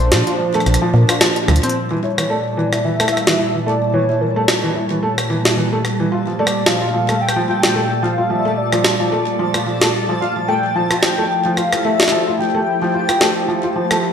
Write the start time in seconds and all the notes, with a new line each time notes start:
Already playing: A#1 A#2 F3 D4 C5 A5
0.12 A#2 F3, snare, closed hi-hat
0.27 F4, closed hi-hat
0.39 F3
0.54 A3, cross-stick
0.60 cross-stick
0.66 A#1, cross-stick, closed hi-hat
0.74 cross-stick, closed hi-hat
0.82 F3
0.94 A#2 A#3
1.09 F4, cross-stick
1.21 F3, snare, closed hi-hat
1.36 closed hi-hat
1.48 D2 F3, cross-stick, low conga
1.56 closed hi-hat
1.63 C4, closed hi-hat
1.69 closed hi-hat
1.75 G3 A3 A5
1.91 E3
2.03 E4 C#5
2.18 E3, cross-stick
2.25 E4
2.30 A3 D5
2.57 E3
2.73 E4, cross-stick
2.84 E3 E5
3.00 A3, cross-stick
3.08 cross-stick
3.12 E5
3.17 F5, cross-stick
3.27 E3 E5, snare
3.39 E4
3.54 E3
3.66 A3 D5
3.73 C#5
3.94 E3 C#5
4.09 E4
4.21 E3 A#4
4.36 A3
4.48 cross-stick, snare
4.63 E3
4.75 E4
4.91 E3
5.03 A3
5.18 cross-stick
5.30 E3
5.45 E4, snare
5.57 E3
5.73 A3
5.85 cross-stick
6.00 E3
6.12 F4
6.27 F3
6.39 A3 D5
6.47 cross-stick
6.66 F3 F5, snare
6.82 F4
6.94 F3
7.09 A3, cross-stick
7.21 G5
7.29 cross-stick
7.36 F3
7.47 F4 G5
7.63 F3 D5, snare
7.75 A3
8.03 F3 F5
8.18 F4
8.30 F3 E5
8.45 A3
8.58 D5
8.72 F3, cross-stick
8.84 F4, snare
9.00 F3
9.12 A3
9.39 F3
9.54 F4, cross-stick
9.66 F3
9.81 A3, snare
10.09 F3
10.21 F4 F5
10.36 F3
10.48 F3 A3 G5
10.64 E4
10.76 F3 A5
10.89 A3 F4, cross-stick
11.03 F3 G5, snare
11.18 A3
11.35 G4
11.45 F3
11.57 F4 F5, cross-stick
11.73 F3, cross-stick
11.85 A3 E5
12.00 snare
12.03 snare
12.08 snare
12.12 F3
12.27 F4
12.39 F3 G5
12.45 C5
12.55 A3
12.82 F3
12.94 F4
13.09 F3, cross-stick
13.21 A3, snare
13.48 F3
13.64 F4
13.76 F3
13.91 A3, cross-stick